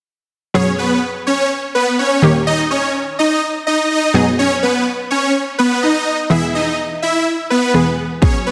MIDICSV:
0, 0, Header, 1, 4, 480
1, 0, Start_track
1, 0, Key_signature, 5, "minor"
1, 0, Tempo, 480000
1, 545, Time_signature, 4, 2, 24, 8
1, 8515, End_track
2, 0, Start_track
2, 0, Title_t, "Supersaw synth"
2, 0, Program_c, 0, 81
2, 548, Note_on_c, 0, 73, 104
2, 555, Note_on_c, 0, 61, 80
2, 753, Note_off_c, 0, 73, 0
2, 757, Note_off_c, 0, 61, 0
2, 786, Note_on_c, 0, 71, 74
2, 794, Note_on_c, 0, 59, 57
2, 992, Note_off_c, 0, 71, 0
2, 996, Note_off_c, 0, 59, 0
2, 1266, Note_on_c, 0, 73, 79
2, 1273, Note_on_c, 0, 61, 63
2, 1472, Note_off_c, 0, 73, 0
2, 1476, Note_off_c, 0, 61, 0
2, 1748, Note_on_c, 0, 71, 83
2, 1755, Note_on_c, 0, 59, 66
2, 1953, Note_off_c, 0, 71, 0
2, 1957, Note_off_c, 0, 59, 0
2, 1989, Note_on_c, 0, 73, 77
2, 1998, Note_on_c, 0, 61, 61
2, 2326, Note_off_c, 0, 73, 0
2, 2330, Note_off_c, 0, 61, 0
2, 2468, Note_on_c, 0, 75, 106
2, 2476, Note_on_c, 0, 63, 84
2, 2673, Note_off_c, 0, 75, 0
2, 2678, Note_off_c, 0, 63, 0
2, 2706, Note_on_c, 0, 73, 76
2, 2713, Note_on_c, 0, 61, 60
2, 2912, Note_off_c, 0, 73, 0
2, 2916, Note_off_c, 0, 61, 0
2, 3188, Note_on_c, 0, 75, 74
2, 3195, Note_on_c, 0, 63, 59
2, 3393, Note_off_c, 0, 75, 0
2, 3397, Note_off_c, 0, 63, 0
2, 3667, Note_on_c, 0, 75, 81
2, 3676, Note_on_c, 0, 63, 64
2, 3873, Note_off_c, 0, 75, 0
2, 3878, Note_off_c, 0, 63, 0
2, 3908, Note_on_c, 0, 75, 85
2, 3915, Note_on_c, 0, 63, 67
2, 4245, Note_off_c, 0, 75, 0
2, 4249, Note_off_c, 0, 63, 0
2, 4389, Note_on_c, 0, 73, 96
2, 4397, Note_on_c, 0, 61, 80
2, 4594, Note_off_c, 0, 73, 0
2, 4598, Note_off_c, 0, 61, 0
2, 4627, Note_on_c, 0, 71, 74
2, 4635, Note_on_c, 0, 59, 58
2, 4832, Note_off_c, 0, 71, 0
2, 4837, Note_off_c, 0, 59, 0
2, 5106, Note_on_c, 0, 73, 67
2, 5114, Note_on_c, 0, 61, 54
2, 5312, Note_off_c, 0, 73, 0
2, 5316, Note_off_c, 0, 61, 0
2, 5585, Note_on_c, 0, 71, 79
2, 5593, Note_on_c, 0, 59, 62
2, 5791, Note_off_c, 0, 71, 0
2, 5796, Note_off_c, 0, 59, 0
2, 5826, Note_on_c, 0, 75, 85
2, 5833, Note_on_c, 0, 63, 67
2, 6164, Note_off_c, 0, 75, 0
2, 6168, Note_off_c, 0, 63, 0
2, 6303, Note_on_c, 0, 76, 112
2, 6312, Note_on_c, 0, 64, 88
2, 6510, Note_off_c, 0, 76, 0
2, 6516, Note_off_c, 0, 64, 0
2, 6548, Note_on_c, 0, 75, 77
2, 6556, Note_on_c, 0, 63, 61
2, 6753, Note_off_c, 0, 75, 0
2, 6757, Note_off_c, 0, 63, 0
2, 7024, Note_on_c, 0, 76, 74
2, 7032, Note_on_c, 0, 64, 60
2, 7231, Note_off_c, 0, 76, 0
2, 7235, Note_off_c, 0, 64, 0
2, 7503, Note_on_c, 0, 71, 84
2, 7511, Note_on_c, 0, 59, 69
2, 7842, Note_off_c, 0, 71, 0
2, 7847, Note_off_c, 0, 59, 0
2, 8225, Note_on_c, 0, 73, 99
2, 8233, Note_on_c, 0, 61, 79
2, 8432, Note_off_c, 0, 73, 0
2, 8436, Note_off_c, 0, 61, 0
2, 8464, Note_on_c, 0, 71, 72
2, 8472, Note_on_c, 0, 59, 57
2, 8515, Note_off_c, 0, 59, 0
2, 8515, Note_off_c, 0, 71, 0
2, 8515, End_track
3, 0, Start_track
3, 0, Title_t, "Synth pluck"
3, 0, Program_c, 1, 84
3, 541, Note_on_c, 1, 54, 65
3, 546, Note_on_c, 1, 59, 60
3, 551, Note_on_c, 1, 68, 74
3, 2190, Note_off_c, 1, 54, 0
3, 2192, Note_off_c, 1, 59, 0
3, 2194, Note_off_c, 1, 68, 0
3, 2222, Note_on_c, 1, 51, 68
3, 2228, Note_on_c, 1, 58, 62
3, 2232, Note_on_c, 1, 67, 72
3, 4105, Note_off_c, 1, 51, 0
3, 4108, Note_off_c, 1, 58, 0
3, 4110, Note_off_c, 1, 67, 0
3, 4139, Note_on_c, 1, 54, 64
3, 4145, Note_on_c, 1, 59, 61
3, 4149, Note_on_c, 1, 68, 72
3, 6024, Note_off_c, 1, 54, 0
3, 6027, Note_off_c, 1, 59, 0
3, 6029, Note_off_c, 1, 68, 0
3, 6300, Note_on_c, 1, 52, 67
3, 6304, Note_on_c, 1, 59, 60
3, 6308, Note_on_c, 1, 68, 73
3, 7714, Note_off_c, 1, 52, 0
3, 7716, Note_off_c, 1, 59, 0
3, 7718, Note_off_c, 1, 68, 0
3, 7740, Note_on_c, 1, 52, 52
3, 7744, Note_on_c, 1, 59, 45
3, 7746, Note_on_c, 1, 68, 54
3, 8210, Note_off_c, 1, 59, 0
3, 8216, Note_off_c, 1, 68, 0
3, 8217, Note_on_c, 1, 54, 67
3, 8222, Note_on_c, 1, 59, 60
3, 8223, Note_off_c, 1, 52, 0
3, 8228, Note_on_c, 1, 68, 74
3, 8515, Note_off_c, 1, 54, 0
3, 8515, Note_off_c, 1, 59, 0
3, 8515, Note_off_c, 1, 68, 0
3, 8515, End_track
4, 0, Start_track
4, 0, Title_t, "Drums"
4, 8224, Note_on_c, 9, 36, 104
4, 8324, Note_off_c, 9, 36, 0
4, 8515, End_track
0, 0, End_of_file